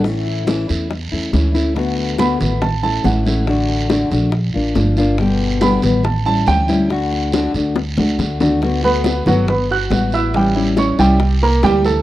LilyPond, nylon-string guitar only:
\new Staff \with { instrumentName = "Nylon-string guitar" } { \time 4/4 \key d \major \tempo 4 = 140 <e a cis' e'>4 <e a cis' e'>8 <a cis' e'>8 r8 <a cis' e'>8 <e a cis' e'>8 <a cis' e'>8 | <d a b fis'>4 <d a b fis'>8 <a b fis'>8 r8 <a cis' e'>8 <e a cis' e'>8 <a cis' e'>8 | <d a d' fis'>4 <d a d' fis'>8 <a d' fis'>8 r8 <bes d' f'>8 <f bes d' f'>8 <bes d' f'>8 | <b, d g b g'>4 <b, d g b g'>8 <g b g'>8 r8 <g cis' e'>8 <e g cis' e'>8 <g cis' e'>8 |
<d a d' fis'>4 <d a d' fis'>8 <a d' fis'>8 r8 <a d' fis'>8 <d a d' fis'>8 <a d' fis'>8 | <d a b fis'>8 <a b fis'>4 <a b fis'>8 r4 <g b fis'>4 | <e g cis' e'>8 <g cis' e'>4 <g cis' e'>8 r4 <e bes c' e'>4 | }